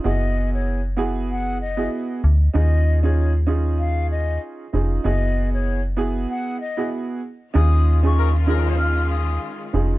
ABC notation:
X:1
M:4/4
L:1/16
Q:"Swing 16ths" 1/4=96
K:Ebm
V:1 name="Flute"
e3 d2 z3 g2 e2 z4 | e3 d2 z3 f2 e2 z4 | e3 d2 z3 g2 e2 z4 | e'3 d'2 z3 f'2 e'2 z4 |]
V:2 name="Grand piano"
[C_FGA]4- [CFGA] z [CFGA]4 z [CFGA]3 z2 | [DEFA]3 [DEFA]2 z [DEFA]6- [DEFA] z [DEFA]2 | [C_FGA]4- [CFGA] z [CFGA]4 z [CFGA]3 z2 | [DEFA]3 [DEFA]2 z [DEFA]6- [DEFA] z [DEFA]2 |]
V:3 name="Horn section"
z16 | z16 | z16 | z4 [F,DB] z [F,DB]2 z8 |]
V:4 name="String section"
z16 | z16 | z16 | [E,A,DF]16 |]
V:5 name="FM bass" clef=bass
G,,,12 z2 =D,,2 | E,,12 z2 F,,,2 | G,,,8 z8 | E,,12 z2 F,,,2 |]